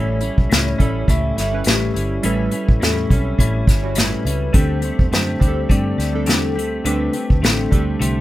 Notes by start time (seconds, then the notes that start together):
Already playing: A1 A2 G3 C#4 E4 A4 C#5
0.21 G3 C#4 E4, closed hi-hat
0.38 B1, kick
0.50 C#2 A2 G3 C#4 E4, snare, closed hi-hat
0.78 A1 G3 C#4 E4 A4, kick, closed hi-hat
1.08 C#2 A2 G3 C#4 E4 E5, kick, closed hi-hat
1.37 G1 G3 C#4 E4 E5, snare, closed hi-hat
1.52 G3 C#4 E4 B4
1.64 A1 A2 G3 C#4 G4, snare, closed hi-hat
1.69 E4
1.94 G1 G3 C#4 E4, closed hi-hat
2.22 A1 A2 G3 C#4 E4 A4 B4, closed hi-hat
2.51 G3 C#4 E4, closed hi-hat
2.69 A1, kick
2.80 E2 A2 G3 C#4 E4 A4, snare, closed hi-hat
3.09 B1 G3 C4 C#4 E4 A4 C#5, kick, closed hi-hat
3.16 C#4
3.39 A1 A2 G3 C#4 E4, kick, closed hi-hat
3.67 G1 G3 C#4 E4, kick, snare, closed hi-hat
3.82 G3 C#4 E4 F#4
3.95 A2 G3 C#4 E4 B4, snare, closed hi-hat
4.25 C#2 G3 C#4 E4, closed hi-hat
4.52 D2 D3 G3 A3 C4 D4 G4 A4 C5, kick, closed hi-hat
4.82 A3 C4 G4, closed hi-hat
4.99 E2, kick
5.12 F#2 D3 A3 C4 G4 C5, snare, closed hi-hat
5.39 D2 G3 A3 C4 D4 G4, kick, closed hi-hat
5.48 A4
5.69 G2 D3 A3 C4 G4 D5, kick, closed hi-hat
5.98 D2 A3 C4 G4, snare, closed hi-hat
6.13 G3 C4 D4 A4
6.26 E2 D3 A3 C4 G4 A4, snare, closed hi-hat
6.56 D2 A3 C4 G4, closed hi-hat
6.84 D2 D3 G3 A3 C4 D4 G4 A4 B4, closed hi-hat
7.13 A3 C4 G4, closed hi-hat
7.30 D2, kick
7.42 A1 D3 A3 C4 G4 A4, snare, closed hi-hat
7.70 D2 G3 A3 C4 D4 G4 A4, kick, closed hi-hat
8.00 C2 D3 A3 C4 G4, closed hi-hat